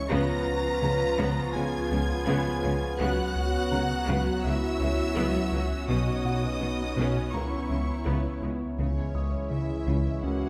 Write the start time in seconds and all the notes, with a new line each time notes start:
Already playing: C#2 E3 G#3 C#4 E4 C#5 C#6 C#7
0.10 C#2 C#3 F3 B3 F4 B4 A#5 A#6
0.47 C#2
0.82 C#2 C#3 F3 G#3
1.18 C#2 C#3 B3
1.54 C#2 C#3 G#3 B3 G#4 G#5 G#6
1.91 C#2 C#3 F3 B3
2.27 C#2 C#3 B3
2.63 C#2 C#3 G#3 B3
2.99 C#2 C#3 F#3 B3 C#4 F#4 C#5 F#5 F#6
3.36 C#2
3.71 C#2 C#3 C#4 A#5
4.08 C#2 C#3 F#3 B3
4.44 C#2 C#3 F#3 E4 F#4 E5 E6
4.80 C#2 C#3 F#4
5.16 C#2 C#3 F#3 B3
5.52 C#2 C#3 F#3 F#4
5.88 B1 B2 B3 C#4 D#4 D#5 D#6
6.25 B2 F#4 F#5
6.61 B1 B2 F#3 B3 F#4
6.97 B1 B2 B3 C#4
7.33 C#2 C#3 E3 G#3 B3 C#4 E4 A#4 C#5 A#5 C#6
7.69 C#2 C#3 E3 B3
8.06 C#2 C#3 B3
8.42 C#2 C#3 G#3 B3
8.78 C#2 C#3 E3 G#3 C#4 E4 C#5
9.14 C#2 D#6
9.51 C#2 C#3 G#3 E4 E5
9.87 C#2 C#3
10.23 C#2 C#3 A#3 C#4 F#4 F#5